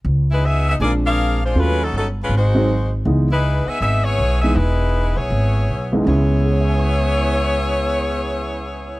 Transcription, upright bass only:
X:1
M:4/4
L:1/8
Q:"Swing" 1/4=160
K:C#m
V:1 name="Upright bass" clef=bass
C,,4 ^A,,,4 | D,,2 =G,,,2 ^G,,,4 | C,,3 z G,,,2 B,,,2 | E,,,3 B,,, G,,,2 B,,,2 |
C,,8- | C,,8 |]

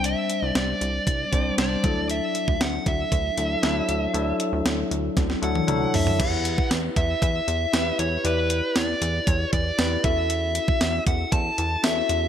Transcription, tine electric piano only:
X:1
M:4/4
L:1/8
Q:1/4=117
K:Dmix
V:1 name="Tine electric piano"
[G,CDc]2 z3 [G,CDc] [G,CDc] [F,DEA]- | [F,DEA]2 z3 [F,DEA] [F,DEA] z | [F,DEA]3 z2 [F,DEA] [F,DEA] z | [K:Edor] [EGB]3 z3 [EGB] z |
[EGd]3 z3 [EGB] [CEFAe]- | [CEFAe]2 z4 [CEFAe] z |]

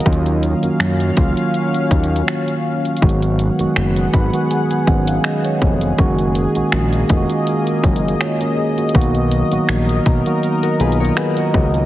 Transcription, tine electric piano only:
X:1
M:4/4
L:1/16
Q:"Swing 16ths" 1/4=81
K:F#
V:1 name="Tine electric piano"
z16 | z6 b2 g g f e d c3 | z12 [Ec] [CA] G [A,F]- | [A,F] z8 z3 [Af] [Fd] [DB] [CA] |]
V:2 name="Tine electric piano"
[D,F,A,CE]2 z [D,F,A,CF]2 z [D,F,A,CE]6 z4 | [D,F,G,B,F]2 z [D,F,G,B,F]3 z [D,F,G,B,F]2 z [D,F,G,B,C]4- [D,F,G,B,C] z | [D,G,A,CF]2 z [D,G,A,CF]2 z [D,G,A,CEF]6 z4 | [D,F,A,B,F]2 z [D,F,A,B,F]3 z [D,F,A,B,F]2 z [D,F,A,B,E]4- [D,F,A,B,E] z |]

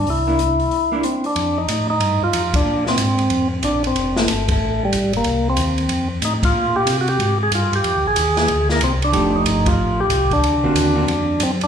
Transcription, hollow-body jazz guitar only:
X:1
M:4/4
L:1/8
Q:"Swing" 1/4=185
K:Fmix
V:1 name="Hollow-body jazz guitar"
z [B,D=E] z3 [B,DE] z2 | z8 | z8 | z8 |
z8 | z8 | z8 | [F,A,EG]4- [F,A,EG] z3 |
z [D,^A,C^F]2 [D,A,CF] z4 |]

